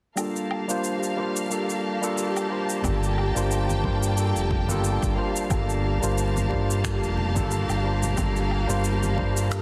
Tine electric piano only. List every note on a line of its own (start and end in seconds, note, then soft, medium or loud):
0.16 0.64 G3 medium
0.16 0.64 A#3 medium
0.16 0.65 D4 medium
0.16 0.65 F4 medium
0.16 0.65 A4 medium
0.68 1.13 G3 medium
0.68 1.14 A#3 medium
0.68 1.14 D4 medium
0.68 1.14 F4 medium
0.68 1.15 C5 medium
1.17 1.47 G3 medium
1.17 1.47 A#3 medium
1.17 1.48 D4 medium
1.17 1.48 F4 medium
1.17 1.48 C5 medium
1.50 1.98 G3 medium
1.50 1.98 A#3 medium
1.50 1.99 D4 medium
1.50 1.99 F4 medium
1.50 1.99 A4 medium
2.01 2.46 G3 medium
2.01 2.47 A#3 medium
2.01 2.47 D4 medium
2.01 2.48 F4 medium
2.01 2.48 A4 medium
2.49 2.80 G3 medium
2.49 2.80 A#3 medium
2.49 2.80 D4 medium
2.49 2.81 F4 medium
2.49 2.81 C5 medium
2.82 3.31 G3 medium
2.82 3.31 A#3 medium
2.82 3.31 D4 medium
2.82 3.32 F4 medium
2.82 3.32 A4 medium
3.35 3.80 G3 medium
3.35 3.80 A#3 medium
3.35 3.81 D4 medium
3.35 3.81 F4 medium
3.35 3.81 C5 medium
3.82 4.13 G3 medium
3.82 4.13 A#3 medium
3.82 4.14 D4 medium
3.82 4.14 F4 medium
3.82 4.14 C5 medium
4.16 4.64 G3 medium
4.16 4.65 A#3 medium
4.16 4.65 D4 medium
4.16 4.66 F4 medium
4.16 4.66 A4 medium
4.68 5.13 G3 medium
4.68 5.14 A#3 medium
4.68 5.14 D4 medium
4.68 5.14 F4 medium
4.68 5.15 A4 loud
5.15 5.46 G3 medium
5.15 5.47 A#3 medium
5.15 5.47 D4 medium
5.15 5.47 F4 medium
5.15 5.48 C5 medium
5.49 5.97 G3 medium
5.49 5.98 A#3 medium
5.49 5.98 D4 medium
5.49 5.99 F4 medium
5.49 5.99 A4 medium
6.01 6.46 G3 medium
6.01 6.47 A#3 medium
6.01 6.47 D4 medium
6.01 6.47 F4 medium
6.01 6.48 C5 medium
6.49 6.80 G3 medium
6.49 6.80 A#3 medium
6.49 6.80 D4 medium
6.49 6.81 F4 medium
6.49 6.81 C5 medium
6.82 7.31 G3 medium
6.82 7.31 A#3 medium
6.82 7.31 D4 medium
7.34 7.80 G3 medium
7.34 7.80 A#3 medium
7.34 7.81 D4 medium
7.34 7.81 F4 medium
7.34 7.81 A4 loud
7.83 8.13 G3 medium
7.83 8.14 A#3 medium
7.83 8.14 D4 medium
7.83 8.14 F4 medium
7.83 8.15 C5 medium
8.16 8.64 G3 medium
8.16 8.65 A#3 medium
8.16 8.65 D4 medium
8.16 8.65 F4 medium
8.16 8.66 A4 medium
8.67 9.13 G3 medium
8.67 9.13 A#3 medium
8.67 9.14 D4 medium
8.67 9.14 F4 medium
8.67 9.14 C5 medium
9.16 9.46 G3 medium
9.16 9.47 A#3 medium
9.16 9.47 D4 medium
9.16 9.48 F4 medium
9.16 9.48 C5 medium
9.49 9.62 G3 medium
9.49 9.62 A#3 medium
9.49 9.62 D4 medium
9.49 9.62 F4 medium
9.49 9.62 A4 medium